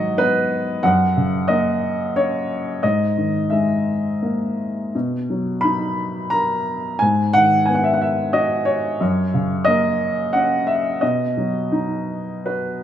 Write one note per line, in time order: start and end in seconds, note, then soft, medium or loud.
0.00 0.80 G#2 medium
0.00 0.47 D#3 soft
0.00 0.80 F#3 soft
0.00 0.21 D#5 medium
0.00 0.83 F#5 medium
0.18 0.82 B3 soft
0.18 0.64 B4 medium
0.83 2.80 F#2 medium
0.83 1.52 F#5 medium
1.17 2.46 C#3 soft
1.48 2.80 A#3 soft
1.48 2.18 D#5 medium
2.16 2.81 C#4 soft
2.16 2.80 C#5 medium
2.83 4.90 G#2 medium
2.83 3.53 D#5 medium
3.17 4.55 D#3 soft
3.50 4.90 G#3 soft
3.50 4.54 E5 medium
4.22 4.92 A#3 soft
4.95 6.98 B2 soft
5.30 6.64 F#3 soft
5.61 6.98 D#4 soft
5.61 6.34 B5 medium
6.30 7.00 A#4 soft
6.30 7.03 A#5 medium
6.99 8.96 G#2 medium
6.99 7.35 G#5 medium
7.33 8.63 D#3 soft
7.33 7.67 F#5 loud
7.66 8.96 B3 soft
7.66 7.75 G#5 medium
7.75 7.84 F#5 medium
7.84 7.92 E5 medium
7.93 8.01 F#5 medium
8.01 8.35 E5 medium
8.33 8.98 F#4 soft
8.33 8.68 D#5 medium
8.65 9.69 C#5 medium
9.01 10.98 F#2 medium
9.34 10.64 C#3 soft
9.65 10.98 A#3 medium
9.65 10.35 D#5 medium
10.33 11.00 C#4 soft
10.33 10.68 F#5 medium
10.67 11.02 E5 medium
11.01 12.83 B2 medium
11.01 12.77 D#5 medium
11.37 12.78 F#3 soft
11.72 12.83 D#4 soft
12.45 12.83 F#4 soft
12.45 12.83 B4 medium